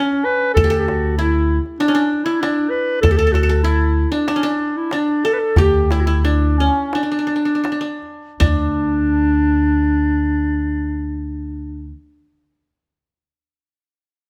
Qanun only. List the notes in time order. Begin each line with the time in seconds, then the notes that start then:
Already playing: C#4 E4
0.57 A4
0.64 G4
0.70 A4
1.19 E4
1.80 D4
1.88 C#4
1.95 D4
2.26 E4
2.43 D4
3.03 A4
3.11 A4
3.19 A4
3.27 A4
3.35 A4
3.43 A4
3.49 A4
3.64 E4
4.12 D4
4.28 D4
4.36 C#4
4.43 D4
4.93 D4
5.25 A4
5.58 G4
5.92 E4
6.07 E4
6.25 D4
6.60 C#4
6.95 D4
7.03 D4
7.12 D4
7.19 D4
7.27 D4
7.36 D4
7.45 D4
7.55 D4
7.64 D4
7.72 D4
7.81 D4
8.40 D4